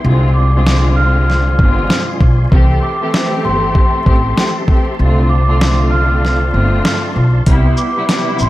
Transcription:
Already playing: C6
0.03 C2 D3 G#3 C4 F4 D5 G#5
0.34 D6
0.55 C2 D3 G#3 C4 F4
0.66 C2 D3 G#3 C4 F4, snare
0.96 F6
1.30 snare
1.59 G1 C2 D3 G#3 C4 F4, kick
1.90 snare
2.21 B1, kick
2.51 C2 E3 A3 C4 G4 E5 A5 C6, kick
2.83 D6
3.00 E3 A3 C4 G4
3.14 E3 A3 C4 G4, snare
3.45 G1 C6
3.75 kick
4.03 A1 E3 A3 C4 G4, kick
4.34 E3 A3 C4 G4, snare
4.67 E3 A3 C4 G4, kick
4.99 C2 D3 A3 C4 F4 D5 C6
5.29 D6
5.47 D3 A3 C4 F4
5.61 D3 A3 C4 F4, snare
5.91 F6
6.25 snare
6.52 G1 D3 A3 C4 F4
6.85 snare
7.16 B1
7.46 C2 C3 G3 B3 E4 G5 C6, kick, closed hi-hat
7.77 D6, shaker
7.95 C3 G3 B3 E4
8.07 C3 G3 B3 E4, snare, closed hi-hat
8.39 A1 C6, shaker

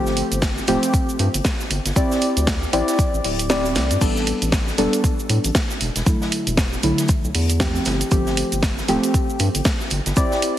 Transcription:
Already playing: G1 F3 A3 C4 G4
0.06 snare, shaker
0.17 open hi-hat, shaker
0.32 G1, closed hi-hat, shaker
0.42 kick, snare, closed hi-hat, shaker
0.57 snare, shaker
0.67 D1 F3 A3 C4 G4, snare, open hi-hat, shaker
0.83 closed hi-hat, shaker
0.94 kick, closed hi-hat, shaker
1.09 shaker
1.19 G2, open hi-hat, shaker
1.34 G1, closed hi-hat, shaker
1.44 kick, snare, closed hi-hat, shaker
1.60 snare, shaker
1.71 G1, open hi-hat, shaker
1.85 G1, snare, closed hi-hat, shaker
1.96 C4 E4 G4 D5, kick, closed hi-hat, shaker
2.12 snare, shaker
2.22 open hi-hat, shaker
2.37 D2, closed hi-hat, shaker
2.47 kick, snare, closed hi-hat, shaker
2.63 shaker
2.73 A1 C4 E4 G4 D5, open hi-hat, shaker
2.88 snare, closed hi-hat, shaker
2.99 kick, closed hi-hat, shaker
3.14 A1, shaker
3.24 D1, open hi-hat
3.39 closed hi-hat, shaker
3.50 C4 E4 G4 D5, snare, open hi-hat, shaker
3.65 closed hi-hat, shaker
3.75 C2, snare, open hi-hat, shaker
3.91 G2, closed hi-hat, shaker
4.01 A1 G3 B3 D4 A4, kick, closed hi-hat, crash, shaker
4.17 snare, shaker
4.27 open hi-hat, shaker
4.42 A1, closed hi-hat, shaker
4.52 kick, snare, closed hi-hat, shaker
4.68 snare, shaker
4.78 E1 G3 B3 D4 A4, snare, open hi-hat, shaker
4.93 closed hi-hat, shaker
5.04 kick, closed hi-hat, shaker
5.19 shaker
5.29 A2, open hi-hat, shaker
5.44 A1, closed hi-hat, shaker
5.55 kick, snare, closed hi-hat, shaker
5.70 snare, shaker
5.81 E1, open hi-hat, shaker
5.96 E1, snare, closed hi-hat, shaker
6.06 D3 F#3 A3 E4, kick, closed hi-hat, shaker
6.22 snare, shaker
6.32 open hi-hat, shaker
6.47 E1, closed hi-hat, shaker
6.57 kick, snare, closed hi-hat, shaker
6.73 shaker
6.83 B1 D3 F#3 A3 E4, open hi-hat, shaker
6.98 snare, closed hi-hat, shaker
7.08 kick, closed hi-hat, shaker
7.24 B1, shaker
7.35 E2, open hi-hat
7.49 closed hi-hat, shaker
7.60 F3 A3 C4 G4, kick, snare, closed hi-hat, shaker
7.75 closed hi-hat, shaker
7.85 G1, snare, open hi-hat, shaker
8.01 closed hi-hat, shaker
8.11 G1 F3 A3 C4 G4, kick, closed hi-hat, shaker
8.26 snare, shaker
8.37 open hi-hat, shaker
8.52 G1, closed hi-hat, shaker
8.63 kick, snare, closed hi-hat, shaker
8.78 snare, shaker
8.88 D1 F3 A3 C4 G4, snare, open hi-hat, shaker
9.03 closed hi-hat, shaker
9.14 kick, closed hi-hat, shaker
9.30 shaker
9.39 G2, open hi-hat, shaker
9.55 G1, closed hi-hat, shaker
9.65 kick, snare, closed hi-hat, shaker
9.81 snare, shaker
9.90 G1, open hi-hat, shaker
10.06 G1, snare, closed hi-hat, shaker
10.16 C4 E4 G4 D5, kick, closed hi-hat, shaker
10.31 snare, shaker
10.42 open hi-hat, shaker

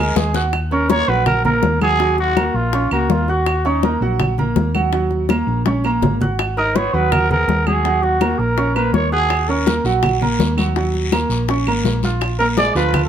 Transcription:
0.00 D2 G#3 G#4 A#4 G#5
0.16 D#2 G#4, low bongo, high conga, short guiro
0.34 F#4 F#5 F#6, low bongo, short guiro
0.53 high bongo, high conga, claves
0.71 C#4 A#4 C#5 C#6, high bongo, high conga
0.90 A#3 A#4 C#5 A#5, high bongo, high conga
1.08 A#1 F#3 F#4 B4 F#5, high conga
1.26 A#4, high bongo, high conga, low conga, claves
1.45 A#3 A#4 A#5, high bongo, high conga, low conga
1.63 D#2, high bongo, low bongo, high conga
1.81 F#3 F#4 G#4 F#5, high bongo, high conga, claves
2.00 F#3 F#4 F#5, high bongo, high conga
2.18 F#4, high bongo, high conga
2.36 A#3 A#4 A#5, high bongo, high conga, claves
2.54 A#1 F4, high conga
2.73 C#4 C#5 C#6, high bongo, high conga
2.91 C#2 A#3 F#4 A#4 A#5, high bongo, high conga, claves
3.10 D#2 F4, high bongo, low bongo, high conga
3.28 F#4 F#5 F#6, high bongo
3.46 high bongo, high conga, claves
3.65 C#4 D#4 C#5 C#6, high bongo, high conga
3.83 A#3 A#4 A#5, high bongo, high conga
4.01 A#1 F#3 F#4 F#5, high conga
4.20 high bongo, high conga, low conga, claves
4.38 A#3 A#4 A#5, high bongo, high conga, low conga
4.56 D#2, high bongo, low bongo, high conga
4.75 F#3 F#4 F#5, high bongo, high conga, claves
4.93 F#3 F#4 F#5, high bongo, high conga
5.11 high bongo, high conga
5.29 A#3 A#4 A#5, high bongo, high conga, claves
5.47 A#1, high conga
5.66 C#4 C#5 C#6, high bongo, high conga
5.84 A#3 A#4 A#5, high bongo, claves
6.02 G#1, high bongo, low bongo, low conga
6.21 F#4 F#5 F#6, high bongo, low conga
6.39 high bongo, high conga, claves
6.57 D#4 A#4 D#5 D#6, high bongo, high conga
6.75 B3 B4 C#5 B5, high bongo, high conga
6.93 D#2 F#3 F#4 B4 F#5, high conga
7.12 A#4, high bongo, high conga, low conga, claves
7.30 B3 G#4 A#4 F#5, high bongo, high conga, low conga
7.48 D#2, high bongo, low bongo, high conga
7.67 F#3 F#4 G#4 F#5, high bongo, high conga, claves
7.85 F#3 F#4 F#5, high bongo, high conga
8.03 F#4, high bongo, high conga
8.21 A#3 A#4 A#5, high bongo, high conga, claves
8.39 A#1 A#4, high conga
8.57 C#4 C#5 C#6, high bongo, high conga
8.75 A#3 A#4 B4 A#5, high bongo, high conga, claves
8.93 D#2 C#5, high bongo, low bongo, high conga
9.12 F#4 G#4 F#5 F#6, high bongo
9.30 high bongo, high conga, long guiro, claves
9.49 C#4 A#4 C#5 C#6, high bongo, high conga
9.67 A#3 A#4 A#5, high bongo, high conga, short guiro
9.84 A#1 F#3 F#4 F#5, high conga, short guiro
10.03 high bongo, high conga, low conga, long guiro, claves
10.21 A#3 A#4 A#5, high bongo, high conga, low conga
10.39 D#2, high bongo, low bongo, high conga, short guiro
10.57 F#3 F#4 F#5, high bongo, high conga, short guiro, claves
10.76 F#3 F#4 F#5, high bongo, high conga, long guiro
10.94 high bongo, high conga
11.12 A#3 A#4 A#5, high bongo, high conga, short guiro, claves
11.29 A#1, high conga, short guiro
11.48 C#4 C#5 C#6, high bongo, high conga, long guiro
11.67 G#1 A#3 A#4 A#5, high bongo, high conga, claves
11.85 A#1, high bongo, low bongo, high conga, short guiro
12.03 F4 F5 F6, high bongo, high conga, short guiro
12.21 high bongo, high conga, long guiro, claves
12.39 A#3 A#4 A#5, high bongo, high conga
12.57 G#3 G#4 D5 G#5, high bongo, high conga, short guiro
12.75 D2 F3 F4 B4 F5, high conga, short guiro
12.94 high bongo, high conga, low conga, long guiro, claves
13.05 A4

